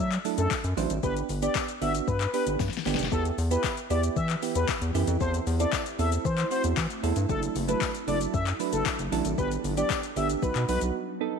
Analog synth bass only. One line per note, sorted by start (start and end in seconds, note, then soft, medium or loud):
0.00 0.18 F#3 loud
0.38 0.48 F#2 medium
0.64 0.74 F#2 loud
0.77 0.87 A1 loud
0.90 1.00 G#1 loud
1.03 1.22 G1 loud
1.29 1.49 G1 medium
1.82 2.01 G1 loud
2.08 2.27 G2 loud
2.47 2.56 G1 medium
2.60 2.69 G2 loud
2.86 2.96 G1 medium
2.99 3.09 F1 medium
3.12 3.31 E2 loud
3.38 3.57 E2 loud
3.90 4.09 E2 medium
4.16 4.36 E3 loud
4.55 4.65 E2 medium
4.82 4.91 E2 medium
4.95 5.04 F#2 medium
5.08 5.17 F2 loud
5.21 5.40 E2 loud
5.47 5.66 E2 loud
5.99 6.18 E2 loud
6.25 6.44 E3 loud
6.64 6.74 E2 medium
6.77 6.87 E3 loud
7.03 7.13 E2 medium
7.16 7.26 G2 medium
7.29 7.49 F#1 loud
7.56 7.75 F#1 loud
8.08 8.27 F#1 medium
8.34 8.53 F#2 loud
8.73 8.83 F#1 medium
8.99 9.09 F#1 medium
9.12 9.22 A1 loud
9.25 9.35 G#1 medium
9.38 9.57 G1 loud
9.64 9.83 G1 loud
10.16 10.36 G1 loud
10.43 10.52 B1 loud
10.56 10.65 B2 loud
10.69 10.78 B1 medium
10.82 10.91 B1 medium